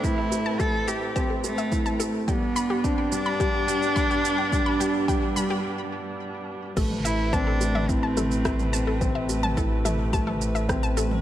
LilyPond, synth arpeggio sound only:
\new Staff \with { instrumentName = "Synth arpeggio sound" } { \time 4/4 \key a \minor \tempo 4 = 107 r16 e''16 r16 a''16 a'16 r16 e''16 r16 a''16 a'16 r16 e''16 r16 a''16 a'16 r16 | g''16 r16 b''16 g'16 r16 g''16 r16 b''16 g'16 r16 g''16 r16 b''16 g'16 r16 g''16 | r16 b''16 g'16 r16 g''16 r16 b''16 g'16 r2 | a'16 r16 e''16 r16 a''16 a'16 r16 e''16 r16 a''16 a'16 r16 e''16 r16 a''16 a'16 |
r16 e''16 r16 a''16 a'16 r16 e''16 r16 a''16 a'16 r16 e''16 r16 a''16 a'16 r16 | }